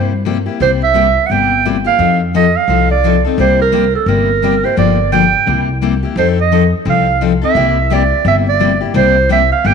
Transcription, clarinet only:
0, 0, Header, 1, 2, 480
1, 0, Start_track
1, 0, Tempo, 347625
1, 833, Time_signature, 4, 2, 24, 8
1, 13452, End_track
2, 0, Start_track
2, 0, Title_t, "Clarinet"
2, 0, Program_c, 0, 71
2, 0, Note_on_c, 0, 72, 78
2, 362, Note_off_c, 0, 72, 0
2, 857, Note_on_c, 0, 72, 91
2, 982, Note_off_c, 0, 72, 0
2, 1153, Note_on_c, 0, 76, 98
2, 1746, Note_on_c, 0, 78, 74
2, 1767, Note_off_c, 0, 76, 0
2, 1815, Note_on_c, 0, 79, 103
2, 1836, Note_off_c, 0, 78, 0
2, 2284, Note_off_c, 0, 79, 0
2, 2583, Note_on_c, 0, 77, 95
2, 3020, Note_off_c, 0, 77, 0
2, 3256, Note_on_c, 0, 75, 93
2, 3539, Note_on_c, 0, 77, 95
2, 3559, Note_off_c, 0, 75, 0
2, 4011, Note_off_c, 0, 77, 0
2, 4018, Note_on_c, 0, 74, 92
2, 4458, Note_off_c, 0, 74, 0
2, 4693, Note_on_c, 0, 72, 92
2, 4954, Note_off_c, 0, 72, 0
2, 4990, Note_on_c, 0, 70, 84
2, 5424, Note_off_c, 0, 70, 0
2, 5458, Note_on_c, 0, 69, 76
2, 5631, Note_on_c, 0, 70, 92
2, 5652, Note_off_c, 0, 69, 0
2, 6420, Note_on_c, 0, 72, 77
2, 6441, Note_off_c, 0, 70, 0
2, 6597, Note_off_c, 0, 72, 0
2, 6606, Note_on_c, 0, 74, 91
2, 7046, Note_off_c, 0, 74, 0
2, 7074, Note_on_c, 0, 79, 85
2, 7789, Note_off_c, 0, 79, 0
2, 8542, Note_on_c, 0, 72, 77
2, 8666, Note_off_c, 0, 72, 0
2, 8848, Note_on_c, 0, 75, 81
2, 9274, Note_off_c, 0, 75, 0
2, 9522, Note_on_c, 0, 77, 89
2, 9946, Note_off_c, 0, 77, 0
2, 10280, Note_on_c, 0, 76, 88
2, 10952, Note_on_c, 0, 74, 83
2, 10972, Note_off_c, 0, 76, 0
2, 11412, Note_off_c, 0, 74, 0
2, 11428, Note_on_c, 0, 76, 90
2, 11551, Note_off_c, 0, 76, 0
2, 11718, Note_on_c, 0, 74, 86
2, 12149, Note_off_c, 0, 74, 0
2, 12390, Note_on_c, 0, 72, 93
2, 12820, Note_off_c, 0, 72, 0
2, 12871, Note_on_c, 0, 76, 93
2, 13124, Note_off_c, 0, 76, 0
2, 13148, Note_on_c, 0, 77, 88
2, 13348, Note_on_c, 0, 79, 105
2, 13369, Note_off_c, 0, 77, 0
2, 13452, Note_off_c, 0, 79, 0
2, 13452, End_track
0, 0, End_of_file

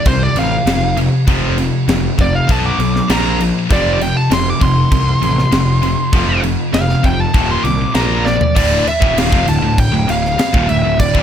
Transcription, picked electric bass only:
0, 0, Header, 1, 3, 480
1, 0, Start_track
1, 0, Key_signature, -1, "minor"
1, 0, Tempo, 607903
1, 1004, Time_signature, 4, 2, 24, 8
1, 8865, End_track
2, 0, Start_track
2, 0, Title_t, "Picked electric bass"
2, 0, Program_c, 0, 34
2, 45, Note_on_c, 0, 36, 85
2, 208, Note_off_c, 0, 36, 0
2, 280, Note_on_c, 0, 33, 82
2, 445, Note_off_c, 0, 33, 0
2, 519, Note_on_c, 0, 29, 90
2, 847, Note_off_c, 0, 29, 0
2, 1006, Note_on_c, 0, 29, 104
2, 1332, Note_off_c, 0, 29, 0
2, 1483, Note_on_c, 0, 29, 85
2, 1646, Note_off_c, 0, 29, 0
2, 1724, Note_on_c, 0, 29, 95
2, 1887, Note_off_c, 0, 29, 0
2, 1967, Note_on_c, 0, 35, 84
2, 2129, Note_off_c, 0, 35, 0
2, 2201, Note_on_c, 0, 35, 79
2, 2365, Note_off_c, 0, 35, 0
2, 2444, Note_on_c, 0, 34, 90
2, 2770, Note_off_c, 0, 34, 0
2, 2927, Note_on_c, 0, 29, 101
2, 3252, Note_off_c, 0, 29, 0
2, 3404, Note_on_c, 0, 29, 84
2, 3567, Note_off_c, 0, 29, 0
2, 3642, Note_on_c, 0, 29, 93
2, 3805, Note_off_c, 0, 29, 0
2, 3880, Note_on_c, 0, 36, 97
2, 4044, Note_off_c, 0, 36, 0
2, 4125, Note_on_c, 0, 33, 79
2, 4287, Note_off_c, 0, 33, 0
2, 4362, Note_on_c, 0, 29, 91
2, 4688, Note_off_c, 0, 29, 0
2, 4841, Note_on_c, 0, 29, 100
2, 5168, Note_off_c, 0, 29, 0
2, 5317, Note_on_c, 0, 29, 94
2, 5482, Note_off_c, 0, 29, 0
2, 5560, Note_on_c, 0, 29, 89
2, 5724, Note_off_c, 0, 29, 0
2, 5798, Note_on_c, 0, 27, 97
2, 5962, Note_off_c, 0, 27, 0
2, 6033, Note_on_c, 0, 36, 80
2, 6199, Note_off_c, 0, 36, 0
2, 6277, Note_on_c, 0, 34, 86
2, 6605, Note_off_c, 0, 34, 0
2, 6762, Note_on_c, 0, 26, 104
2, 6985, Note_off_c, 0, 26, 0
2, 7122, Note_on_c, 0, 27, 93
2, 7345, Note_off_c, 0, 27, 0
2, 7359, Note_on_c, 0, 29, 96
2, 7470, Note_off_c, 0, 29, 0
2, 7474, Note_on_c, 0, 26, 78
2, 7587, Note_off_c, 0, 26, 0
2, 7591, Note_on_c, 0, 26, 79
2, 7820, Note_off_c, 0, 26, 0
2, 7832, Note_on_c, 0, 26, 82
2, 7948, Note_off_c, 0, 26, 0
2, 7958, Note_on_c, 0, 26, 83
2, 8183, Note_off_c, 0, 26, 0
2, 8324, Note_on_c, 0, 27, 97
2, 8435, Note_off_c, 0, 27, 0
2, 8447, Note_on_c, 0, 26, 78
2, 8556, Note_off_c, 0, 26, 0
2, 8568, Note_on_c, 0, 26, 83
2, 8789, Note_off_c, 0, 26, 0
2, 8802, Note_on_c, 0, 26, 103
2, 8865, Note_off_c, 0, 26, 0
2, 8865, End_track
3, 0, Start_track
3, 0, Title_t, "Muted picked electric bass strokes"
3, 6999, Note_on_c, 9, 29, 43
3, 7078, Note_off_c, 9, 29, 0
3, 8205, Note_on_c, 9, 29, 39
3, 8284, Note_off_c, 9, 29, 0
3, 8865, End_track
0, 0, End_of_file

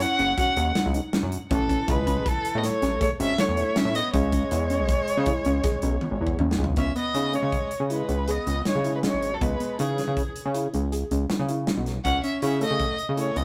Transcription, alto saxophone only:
0, 0, Header, 1, 2, 480
1, 0, Start_track
1, 0, Key_signature, 4, "minor"
1, 0, Tempo, 376412
1, 1924, Time_signature, 7, 2, 24, 8
1, 17144, End_track
2, 0, Start_track
2, 0, Title_t, "Alto saxophone"
2, 0, Program_c, 0, 65
2, 0, Note_on_c, 0, 61, 86
2, 466, Note_off_c, 0, 61, 0
2, 474, Note_on_c, 0, 61, 69
2, 925, Note_off_c, 0, 61, 0
2, 1920, Note_on_c, 0, 52, 72
2, 2399, Note_on_c, 0, 56, 79
2, 2418, Note_off_c, 0, 52, 0
2, 2881, Note_on_c, 0, 52, 71
2, 2900, Note_off_c, 0, 56, 0
2, 3280, Note_on_c, 0, 59, 60
2, 3299, Note_off_c, 0, 52, 0
2, 3357, Note_on_c, 0, 57, 76
2, 3376, Note_off_c, 0, 59, 0
2, 3838, Note_off_c, 0, 57, 0
2, 3847, Note_on_c, 0, 57, 82
2, 3953, Note_off_c, 0, 57, 0
2, 4075, Note_on_c, 0, 61, 82
2, 4320, Note_on_c, 0, 57, 77
2, 4339, Note_off_c, 0, 61, 0
2, 4786, Note_on_c, 0, 61, 77
2, 4805, Note_off_c, 0, 57, 0
2, 5041, Note_on_c, 0, 59, 70
2, 5060, Note_off_c, 0, 61, 0
2, 5265, Note_off_c, 0, 59, 0
2, 5272, Note_on_c, 0, 56, 76
2, 8102, Note_off_c, 0, 56, 0
2, 8643, Note_on_c, 0, 61, 77
2, 8860, Note_off_c, 0, 61, 0
2, 8867, Note_on_c, 0, 59, 71
2, 9355, Note_on_c, 0, 56, 78
2, 9374, Note_off_c, 0, 59, 0
2, 9836, Note_off_c, 0, 56, 0
2, 10092, Note_on_c, 0, 56, 66
2, 10567, Note_on_c, 0, 59, 65
2, 10586, Note_off_c, 0, 56, 0
2, 11044, Note_off_c, 0, 59, 0
2, 11051, Note_on_c, 0, 56, 61
2, 11382, Note_off_c, 0, 56, 0
2, 11412, Note_on_c, 0, 56, 55
2, 11464, Note_off_c, 0, 56, 0
2, 11538, Note_on_c, 0, 56, 71
2, 11890, Note_on_c, 0, 54, 58
2, 11910, Note_off_c, 0, 56, 0
2, 12012, Note_on_c, 0, 56, 68
2, 12031, Note_off_c, 0, 54, 0
2, 12488, Note_off_c, 0, 56, 0
2, 12495, Note_on_c, 0, 52, 51
2, 13160, Note_off_c, 0, 52, 0
2, 15364, Note_on_c, 0, 61, 79
2, 15588, Note_off_c, 0, 61, 0
2, 15601, Note_on_c, 0, 61, 73
2, 15827, Note_off_c, 0, 61, 0
2, 15852, Note_on_c, 0, 61, 78
2, 16072, Note_off_c, 0, 61, 0
2, 16081, Note_on_c, 0, 57, 79
2, 16530, Note_off_c, 0, 57, 0
2, 16792, Note_on_c, 0, 57, 63
2, 17024, Note_on_c, 0, 59, 71
2, 17044, Note_off_c, 0, 57, 0
2, 17144, Note_off_c, 0, 59, 0
2, 17144, End_track
0, 0, End_of_file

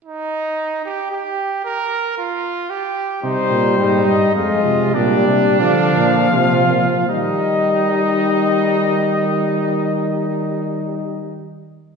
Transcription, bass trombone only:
0, 0, Header, 1, 2, 480
1, 0, Start_track
1, 0, Key_signature, -3, "major"
1, 0, Tempo, 534759
1, 35, Time_signature, 3, 2, 24, 8
1, 3395, Tempo, 586510
1, 4355, Tempo, 649351
1, 4835, Tempo, 705053
1, 5315, Tempo, 782269
1, 5795, Tempo, 823045
1, 8634, End_track
2, 0, Start_track
2, 0, Title_t, "Bass trombone"
2, 0, Program_c, 0, 57
2, 2900, Note_on_c, 0, 48, 75
2, 3010, Note_off_c, 0, 48, 0
2, 3143, Note_on_c, 0, 46, 70
2, 3384, Note_off_c, 0, 46, 0
2, 3389, Note_on_c, 0, 44, 69
2, 3621, Note_on_c, 0, 43, 66
2, 3633, Note_off_c, 0, 44, 0
2, 3853, Note_off_c, 0, 43, 0
2, 3858, Note_on_c, 0, 41, 71
2, 4098, Note_off_c, 0, 41, 0
2, 4103, Note_on_c, 0, 48, 75
2, 4349, Note_off_c, 0, 48, 0
2, 4355, Note_on_c, 0, 46, 84
2, 4585, Note_off_c, 0, 46, 0
2, 4590, Note_on_c, 0, 48, 76
2, 4700, Note_off_c, 0, 48, 0
2, 4835, Note_on_c, 0, 50, 73
2, 5065, Note_off_c, 0, 50, 0
2, 5074, Note_on_c, 0, 46, 75
2, 5312, Note_off_c, 0, 46, 0
2, 5319, Note_on_c, 0, 48, 70
2, 5545, Note_off_c, 0, 48, 0
2, 5551, Note_on_c, 0, 46, 75
2, 5650, Note_off_c, 0, 46, 0
2, 5797, Note_on_c, 0, 51, 69
2, 8271, Note_off_c, 0, 51, 0
2, 8634, End_track
0, 0, End_of_file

